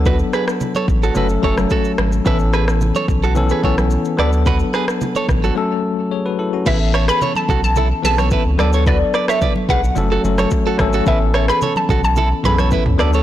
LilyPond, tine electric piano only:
\new Staff \with { instrumentName = "Tine electric piano" } { \time 4/4 \key a \major \tempo 4 = 109 << { r1 | r1 | r2. <gis' cis''>16 <fis' b'>16 <e' a'>16 <cis' fis'>16~ | <cis' fis'>16 r2. r8. |
r1 | r1 | } \\ { <fis b d' a'>4 r4 <fis a cis' a'>8 <fis a cis' a'>4 r8 | <e b cis' a'>4. r8 <e b cis' a'>8 <e b cis' a'>4 <fis b d' a'>8~ | <fis b d' a'>4 r4 <fis a cis' a'>8 r4. | <e b cis' gis' a'>4. r4 <e b c' cis' a'>4 <fis b d' a'>8~ |
<fis b d' a'>4 r4 <fis a cis' a'>8 <fis a cis' a'>4 <fis a cis' a'>8 | <e b cis' a'>4. r4 <e b cis' a'>4 <fis b d' a'>8 | } >> }